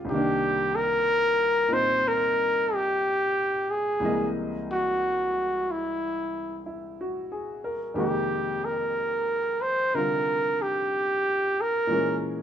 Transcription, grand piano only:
0, 0, Header, 1, 2, 480
1, 0, Start_track
1, 0, Tempo, 983607
1, 38, Time_signature, 4, 2, 24, 8
1, 6062, End_track
2, 0, Start_track
2, 0, Title_t, "Grand piano"
2, 0, Program_c, 0, 0
2, 0, Control_c, 0, 64, 127
2, 0, Note_on_c, 0, 65, 49
2, 23, Note_on_c, 0, 36, 52
2, 33, Note_on_c, 0, 48, 48
2, 43, Control_c, 0, 64, 0
2, 56, Note_on_c, 0, 51, 49
2, 64, Note_on_c, 0, 58, 48
2, 76, Note_on_c, 0, 62, 61
2, 134, Control_c, 0, 64, 127
2, 144, Note_off_c, 0, 65, 0
2, 823, Note_on_c, 0, 46, 44
2, 835, Note_on_c, 0, 60, 39
2, 839, Note_on_c, 0, 63, 45
2, 1945, Note_off_c, 0, 36, 0
2, 1949, Note_off_c, 0, 48, 0
2, 1950, Note_off_c, 0, 46, 0
2, 1952, Note_on_c, 0, 36, 51
2, 1956, Note_off_c, 0, 60, 0
2, 1956, Note_on_c, 0, 48, 43
2, 1958, Note_off_c, 0, 63, 0
2, 1961, Control_c, 0, 64, 0
2, 1962, Note_on_c, 0, 52, 46
2, 1963, Note_off_c, 0, 51, 0
2, 1964, Note_on_c, 0, 56, 47
2, 1968, Note_off_c, 0, 58, 0
2, 1973, Note_off_c, 0, 62, 0
2, 1976, Note_on_c, 0, 58, 46
2, 1977, Note_on_c, 0, 75, 56
2, 2039, Control_c, 0, 64, 127
2, 3251, Note_on_c, 0, 64, 43
2, 3420, Note_on_c, 0, 66, 44
2, 3492, Note_off_c, 0, 64, 0
2, 3571, Note_on_c, 0, 68, 45
2, 3706, Note_off_c, 0, 66, 0
2, 3730, Note_on_c, 0, 70, 49
2, 3812, Note_off_c, 0, 68, 0
2, 3869, Note_off_c, 0, 48, 0
2, 3876, Note_off_c, 0, 56, 0
2, 3876, Note_on_c, 0, 41, 46
2, 3876, Note_on_c, 0, 48, 41
2, 3878, Note_off_c, 0, 36, 0
2, 3880, Note_off_c, 0, 58, 0
2, 3882, Note_on_c, 0, 67, 52
2, 3883, Note_off_c, 0, 52, 0
2, 3883, Note_on_c, 0, 51, 40
2, 3884, Note_on_c, 0, 56, 42
2, 3885, Control_c, 0, 64, 0
2, 3887, Note_on_c, 0, 58, 44
2, 3890, Note_off_c, 0, 75, 0
2, 3967, Control_c, 0, 64, 127
2, 3972, Note_off_c, 0, 70, 0
2, 4844, Note_off_c, 0, 48, 0
2, 4851, Note_on_c, 0, 48, 41
2, 4855, Note_on_c, 0, 50, 37
2, 4859, Note_on_c, 0, 55, 35
2, 4861, Note_on_c, 0, 65, 42
2, 5794, Note_on_c, 0, 46, 46
2, 5798, Note_off_c, 0, 41, 0
2, 5801, Note_off_c, 0, 51, 0
2, 5801, Note_off_c, 0, 67, 0
2, 5802, Note_off_c, 0, 56, 0
2, 5804, Note_off_c, 0, 58, 0
2, 5804, Note_on_c, 0, 52, 43
2, 5805, Note_off_c, 0, 48, 0
2, 5805, Control_c, 0, 64, 0
2, 5807, Note_off_c, 0, 50, 0
2, 5809, Note_off_c, 0, 55, 0
2, 5809, Note_on_c, 0, 56, 47
2, 5810, Note_off_c, 0, 65, 0
2, 5813, Note_on_c, 0, 61, 47
2, 5820, Note_on_c, 0, 70, 56
2, 5884, Control_c, 0, 64, 127
2, 6062, Note_off_c, 0, 46, 0
2, 6062, Note_off_c, 0, 52, 0
2, 6062, Note_off_c, 0, 56, 0
2, 6062, Note_off_c, 0, 61, 0
2, 6062, Note_off_c, 0, 70, 0
2, 6062, End_track
0, 0, End_of_file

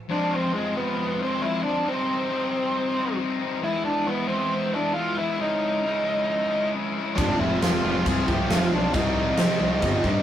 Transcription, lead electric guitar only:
0, 0, Header, 1, 2, 480
1, 0, Start_track
1, 0, Tempo, 441826
1, 103, Time_signature, 4, 2, 24, 8
1, 11108, End_track
2, 0, Start_track
2, 0, Title_t, "Lead electric guitar"
2, 0, Program_c, 0, 29
2, 122, Note_on_c, 0, 62, 98
2, 338, Note_on_c, 0, 60, 79
2, 361, Note_off_c, 0, 62, 0
2, 579, Note_off_c, 0, 60, 0
2, 584, Note_on_c, 0, 56, 80
2, 809, Note_off_c, 0, 56, 0
2, 837, Note_on_c, 0, 59, 97
2, 1324, Note_off_c, 0, 59, 0
2, 1329, Note_on_c, 0, 60, 100
2, 1541, Note_on_c, 0, 64, 100
2, 1566, Note_off_c, 0, 60, 0
2, 1765, Note_off_c, 0, 64, 0
2, 1770, Note_on_c, 0, 62, 94
2, 2028, Note_off_c, 0, 62, 0
2, 2045, Note_on_c, 0, 60, 96
2, 3438, Note_off_c, 0, 60, 0
2, 3955, Note_on_c, 0, 64, 102
2, 4177, Note_off_c, 0, 64, 0
2, 4182, Note_on_c, 0, 62, 85
2, 4414, Note_on_c, 0, 59, 89
2, 4436, Note_off_c, 0, 62, 0
2, 4646, Note_off_c, 0, 59, 0
2, 4650, Note_on_c, 0, 60, 97
2, 5147, Note_on_c, 0, 62, 100
2, 5158, Note_off_c, 0, 60, 0
2, 5364, Note_off_c, 0, 62, 0
2, 5368, Note_on_c, 0, 65, 103
2, 5630, Note_off_c, 0, 65, 0
2, 5634, Note_on_c, 0, 64, 101
2, 5859, Note_off_c, 0, 64, 0
2, 5882, Note_on_c, 0, 63, 88
2, 7275, Note_off_c, 0, 63, 0
2, 7781, Note_on_c, 0, 62, 89
2, 8031, Note_off_c, 0, 62, 0
2, 8035, Note_on_c, 0, 64, 87
2, 8258, Note_off_c, 0, 64, 0
2, 8281, Note_on_c, 0, 65, 94
2, 8519, Note_off_c, 0, 65, 0
2, 8532, Note_on_c, 0, 65, 99
2, 8747, Note_off_c, 0, 65, 0
2, 8780, Note_on_c, 0, 68, 103
2, 8986, Note_off_c, 0, 68, 0
2, 8990, Note_on_c, 0, 67, 96
2, 9238, Note_off_c, 0, 67, 0
2, 9257, Note_on_c, 0, 65, 96
2, 9470, Note_off_c, 0, 65, 0
2, 9474, Note_on_c, 0, 62, 89
2, 9696, Note_off_c, 0, 62, 0
2, 9709, Note_on_c, 0, 63, 89
2, 11108, Note_off_c, 0, 63, 0
2, 11108, End_track
0, 0, End_of_file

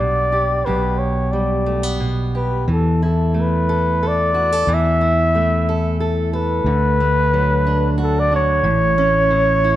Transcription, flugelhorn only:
0, 0, Header, 1, 2, 480
1, 0, Start_track
1, 0, Tempo, 665188
1, 482, Time_signature, 3, 2, 24, 8
1, 7044, End_track
2, 0, Start_track
2, 0, Title_t, "Flugelhorn"
2, 0, Program_c, 0, 56
2, 0, Note_on_c, 0, 74, 91
2, 469, Note_on_c, 0, 71, 74
2, 480, Note_off_c, 0, 74, 0
2, 708, Note_on_c, 0, 73, 68
2, 718, Note_off_c, 0, 71, 0
2, 949, Note_on_c, 0, 74, 66
2, 960, Note_off_c, 0, 73, 0
2, 1443, Note_off_c, 0, 74, 0
2, 1701, Note_on_c, 0, 71, 63
2, 1923, Note_off_c, 0, 71, 0
2, 1963, Note_on_c, 0, 69, 65
2, 2175, Note_off_c, 0, 69, 0
2, 2197, Note_on_c, 0, 69, 61
2, 2456, Note_on_c, 0, 71, 75
2, 2467, Note_off_c, 0, 69, 0
2, 2939, Note_on_c, 0, 74, 88
2, 2950, Note_off_c, 0, 71, 0
2, 3416, Note_on_c, 0, 76, 100
2, 3427, Note_off_c, 0, 74, 0
2, 4353, Note_off_c, 0, 76, 0
2, 4580, Note_on_c, 0, 71, 101
2, 5739, Note_off_c, 0, 71, 0
2, 5796, Note_on_c, 0, 69, 85
2, 5912, Note_on_c, 0, 74, 99
2, 5922, Note_off_c, 0, 69, 0
2, 6016, Note_off_c, 0, 74, 0
2, 6030, Note_on_c, 0, 73, 109
2, 7044, Note_off_c, 0, 73, 0
2, 7044, End_track
0, 0, End_of_file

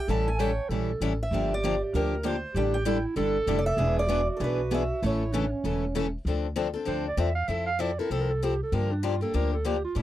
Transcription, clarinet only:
0, 0, Header, 1, 2, 480
1, 0, Start_track
1, 0, Key_signature, -1, "minor"
1, 0, Tempo, 308642
1, 128, Time_signature, 4, 2, 24, 8
1, 15585, End_track
2, 0, Start_track
2, 0, Title_t, "Clarinet"
2, 0, Program_c, 0, 71
2, 123, Note_on_c, 0, 69, 84
2, 615, Note_on_c, 0, 73, 88
2, 638, Note_off_c, 0, 69, 0
2, 1072, Note_on_c, 0, 69, 94
2, 1095, Note_off_c, 0, 73, 0
2, 1847, Note_off_c, 0, 69, 0
2, 2065, Note_on_c, 0, 67, 79
2, 3508, Note_off_c, 0, 67, 0
2, 3945, Note_on_c, 0, 67, 82
2, 4403, Note_off_c, 0, 67, 0
2, 4448, Note_on_c, 0, 64, 82
2, 4895, Note_off_c, 0, 64, 0
2, 4920, Note_on_c, 0, 69, 107
2, 5875, Note_on_c, 0, 68, 89
2, 5899, Note_off_c, 0, 69, 0
2, 6336, Note_on_c, 0, 66, 78
2, 6359, Note_off_c, 0, 68, 0
2, 7818, Note_on_c, 0, 64, 81
2, 7841, Note_off_c, 0, 66, 0
2, 8282, Note_on_c, 0, 62, 69
2, 8306, Note_off_c, 0, 64, 0
2, 8566, Note_on_c, 0, 61, 70
2, 8590, Note_off_c, 0, 62, 0
2, 9529, Note_off_c, 0, 61, 0
2, 10686, Note_on_c, 0, 72, 72
2, 10952, Note_off_c, 0, 72, 0
2, 11011, Note_on_c, 0, 74, 77
2, 11194, Note_on_c, 0, 76, 69
2, 11217, Note_off_c, 0, 74, 0
2, 11423, Note_off_c, 0, 76, 0
2, 11432, Note_on_c, 0, 77, 88
2, 11633, Note_on_c, 0, 76, 73
2, 11656, Note_off_c, 0, 77, 0
2, 11909, Note_off_c, 0, 76, 0
2, 11918, Note_on_c, 0, 77, 95
2, 12144, Note_on_c, 0, 74, 74
2, 12167, Note_off_c, 0, 77, 0
2, 12425, Note_on_c, 0, 70, 73
2, 12449, Note_off_c, 0, 74, 0
2, 12612, Note_on_c, 0, 69, 74
2, 12635, Note_off_c, 0, 70, 0
2, 12764, Note_on_c, 0, 70, 80
2, 12787, Note_off_c, 0, 69, 0
2, 12909, Note_on_c, 0, 69, 74
2, 12933, Note_off_c, 0, 70, 0
2, 13125, Note_on_c, 0, 67, 64
2, 13148, Note_off_c, 0, 69, 0
2, 13392, Note_off_c, 0, 67, 0
2, 13421, Note_on_c, 0, 69, 71
2, 13601, Note_on_c, 0, 70, 75
2, 13624, Note_off_c, 0, 69, 0
2, 13871, Note_on_c, 0, 62, 61
2, 13894, Note_off_c, 0, 70, 0
2, 14068, Note_on_c, 0, 65, 58
2, 14092, Note_off_c, 0, 62, 0
2, 14335, Note_off_c, 0, 65, 0
2, 14344, Note_on_c, 0, 69, 76
2, 14545, Note_on_c, 0, 70, 93
2, 14568, Note_off_c, 0, 69, 0
2, 14822, Note_off_c, 0, 70, 0
2, 14830, Note_on_c, 0, 69, 67
2, 15021, Note_on_c, 0, 67, 67
2, 15045, Note_off_c, 0, 69, 0
2, 15300, Note_off_c, 0, 67, 0
2, 15308, Note_on_c, 0, 65, 71
2, 15528, Note_on_c, 0, 64, 65
2, 15552, Note_off_c, 0, 65, 0
2, 15585, Note_off_c, 0, 64, 0
2, 15585, End_track
0, 0, End_of_file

